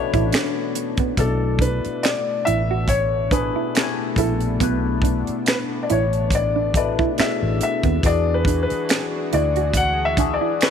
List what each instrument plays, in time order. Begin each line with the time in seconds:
Already playing: tine electric piano B2 A3 C#4 D4 C#5, analog synth pad E3 B3 D4, grand piano B5
0.14 fingered electric bass A1, clean electric guitar E4, kick, closed hi-hat
0.32 clean electric guitar D4, finger snap, snare, closed hi-hat
0.75 muted clean electric guitar stroke, closed hi-hat
0.97 clean electric guitar B3, kick, closed hi-hat
1.17 fingered electric bass B1, tine electric piano B2 A3 C#4 E4 D5, analog synth pad A3 B3 D4, grand piano A4, kick, closed hi-hat
1.25 tine electric piano D4
1.59 clean electric guitar D4, grand piano B4, kick, closed hi-hat
1.85 muted fingered electric bass stroke, closed hi-hat
2.03 grand piano D5, finger snap, muted clean electric guitar stroke, snare, closed hi-hat
2.45 fingered electric bass A1, clean electric guitar E4, grand piano E5, closed hi-hat
2.71 clean electric guitar F#4
2.88 grand piano C#5, muted clean electric guitar stroke, kick, closed hi-hat
3.31 tine electric piano B2 A3 D4 E4 G#4, clean electric guitar D4, grand piano B4, kick, closed hi-hat
3.56 clean electric guitar E4
3.75 tine electric piano A3 B3 D4 E4 G4, finger snap, snare, closed hi-hat
3.84 tine electric piano G#5
4.16 fingered electric bass A#1, clean electric guitar E4, grand piano A4, kick, closed hi-hat
4.40 closed hi-hat
4.60 fingered electric bass B1, tine electric piano B2 A3 D4 E4 B4, clean electric guitar B3, kick, closed hi-hat
5.02 clean electric guitar D4, kick, closed hi-hat
5.27 muted fingered electric bass stroke, closed hi-hat
5.46 grand piano B4, finger snap, snare, closed hi-hat
5.83 grand piano D5
5.90 fingered electric bass A1, clean electric guitar E4, grand piano C#5, closed hi-hat
6.13 closed hi-hat
6.30 kick, closed hi-hat
6.35 grand piano D5
6.56 clean electric guitar D4
6.74 tine electric piano B2 A3 D4 E4 B4, grand piano D5, muted clean electric guitar stroke, kick, closed hi-hat
6.99 clean electric guitar E4, kick
7.18 tine electric piano B2 A3 D4 E4 G#4, clean electric guitar D4, grand piano E5, finger snap, muted fingered electric bass stroke, snare, closed hi-hat
7.27 tine electric piano A4
7.43 fingered electric bass A1
7.61 grand piano E5, muted clean electric guitar stroke, closed hi-hat
7.83 fingered electric bass D#2, clean electric guitar B3, kick, closed hi-hat
8.03 fingered electric bass E2, analog synth pad E3 F#4 G#4, tine electric piano E3 D4 F#4 G#4, grand piano D5, kick, closed hi-hat
8.34 grand piano B4
8.45 clean electric guitar D4, kick, closed hi-hat
8.63 grand piano B4
8.70 muted fingered electric bass stroke, closed hi-hat
8.89 finger snap, muted clean electric guitar stroke, snare, closed hi-hat
9.33 fingered electric bass D2, clean electric guitar E4, grand piano D5, closed hi-hat
9.56 clean electric guitar F#4, closed hi-hat
9.74 grand piano F#5, muted clean electric guitar stroke, kick, closed hi-hat
10.05 grand piano E5
10.17 tine electric piano E3 D4 F#4 G#4, clean electric guitar D4, kick, closed hi-hat
10.34 grand piano D5
10.41 clean electric guitar E4
10.61 tine electric piano E3 D4 F#4 A4, grand piano B4, finger snap, snare, closed hi-hat